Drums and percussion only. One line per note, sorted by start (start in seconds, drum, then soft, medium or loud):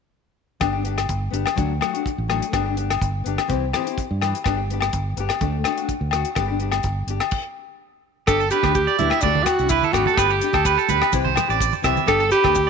0.61 kick medium
0.61 cross-stick medium
0.61 closed hi-hat soft
0.61 low agogo medium
0.85 closed hi-hat soft
0.98 cross-stick medium
0.98 closed hi-hat soft
0.98 low agogo medium
1.09 kick medium
1.09 closed hi-hat soft
1.34 closed hi-hat soft
1.46 cross-stick medium
1.46 closed hi-hat soft
1.46 low agogo medium
1.58 kick medium
1.58 closed hi-hat soft
1.81 cross-stick medium
1.81 closed hi-hat soft
1.81 low agogo medium
1.95 closed hi-hat soft
2.06 kick medium
2.06 closed hi-hat soft
2.30 cross-stick medium
2.30 closed hi-hat soft
2.30 low agogo medium
2.42 closed hi-hat soft
2.53 kick medium
2.53 cross-stick medium
2.53 closed hi-hat soft
2.53 low agogo medium
2.77 closed hi-hat soft
2.90 cross-stick medium
2.90 closed hi-hat soft
2.90 low agogo medium
3.02 kick medium
3.02 closed hi-hat soft
3.26 closed hi-hat soft
3.38 cross-stick medium
3.38 closed hi-hat soft
3.38 low agogo medium
3.50 kick medium
3.50 closed hi-hat soft
3.73 cross-stick medium
3.73 closed hi-hat soft
3.73 low agogo medium
3.87 closed hi-hat soft
3.98 kick medium
3.98 closed hi-hat soft
4.21 cross-stick medium
4.21 closed hi-hat soft
4.21 low agogo medium
4.35 closed hi-hat soft
4.44 kick medium
4.44 cross-stick medium
4.44 closed hi-hat soft
4.44 low agogo medium
4.70 closed hi-hat soft
4.81 cross-stick medium
4.81 closed hi-hat soft
4.81 low agogo medium
4.93 kick medium
4.93 closed hi-hat soft
5.17 closed hi-hat soft
5.29 cross-stick medium
5.29 closed hi-hat soft
5.29 low agogo medium
5.41 kick medium
5.41 closed hi-hat soft
5.64 cross-stick medium
5.64 closed hi-hat soft
5.64 low agogo medium
5.77 closed hi-hat soft
5.89 kick medium
5.89 closed hi-hat soft
6.11 cross-stick medium
6.11 closed hi-hat soft
6.11 low agogo medium
6.25 closed hi-hat soft
6.35 kick medium
6.35 cross-stick medium
6.35 closed hi-hat soft
6.35 low agogo medium
6.60 closed hi-hat soft
6.71 cross-stick medium
6.71 closed hi-hat soft
6.71 low agogo medium
6.83 kick medium
6.83 closed hi-hat soft
7.08 closed hi-hat soft
7.20 cross-stick medium
7.20 closed hi-hat soft
7.20 low agogo medium
7.31 kick medium
7.31 crash medium
8.27 kick medium
8.27 cross-stick medium
8.27 low agogo medium
8.27 maracas medium
8.40 maracas soft
8.51 closed hi-hat soft
8.51 maracas medium
8.63 kick medium
8.63 cross-stick medium
8.63 high conga medium
8.63 low agogo medium
8.63 maracas soft
8.75 kick medium
8.75 maracas medium
8.87 maracas soft
8.99 closed hi-hat soft
8.99 low conga medium
9.10 cross-stick medium
9.10 low agogo medium
9.10 maracas soft
9.21 kick medium
9.21 maracas medium
9.35 high conga medium
9.46 cross-stick medium
9.46 closed hi-hat medium
9.46 low conga medium
9.46 low agogo medium
9.46 maracas medium
9.59 maracas soft
9.69 kick medium
9.69 maracas medium
9.82 high conga medium
9.82 maracas soft
9.93 cross-stick medium
9.93 closed hi-hat soft
9.93 low conga medium
9.93 low agogo medium
9.93 maracas medium
10.06 high conga medium
10.06 maracas soft
10.17 kick medium
10.17 cross-stick medium
10.17 low agogo medium
10.17 maracas medium
10.30 maracas soft
10.41 closed hi-hat soft
10.41 maracas medium
10.53 kick medium
10.53 cross-stick medium
10.53 high conga medium
10.53 low agogo medium
10.53 maracas soft
10.65 kick medium
10.65 maracas medium
10.79 maracas soft
10.89 closed hi-hat medium
10.89 low conga medium
10.89 maracas medium
11.02 cross-stick medium
11.02 low agogo medium
11.02 maracas soft
11.13 kick medium
11.13 maracas medium
11.26 high conga medium
11.36 cross-stick medium
11.36 closed hi-hat medium
11.36 low conga medium
11.36 low agogo medium
11.36 maracas medium
11.50 maracas soft
11.61 kick medium
11.61 maracas medium
11.73 high conga medium
11.73 maracas soft
11.84 cross-stick medium
11.84 closed hi-hat soft
11.84 low conga medium
11.84 low agogo medium
11.84 maracas medium
11.97 high conga medium
11.97 maracas soft
12.08 kick medium
12.08 cross-stick medium
12.08 low agogo medium
12.08 maracas medium
12.20 maracas soft
12.31 closed hi-hat soft
12.31 maracas medium
12.44 kick medium
12.44 cross-stick medium
12.44 high conga medium
12.44 low agogo medium
12.44 maracas soft
12.55 kick medium
12.55 maracas medium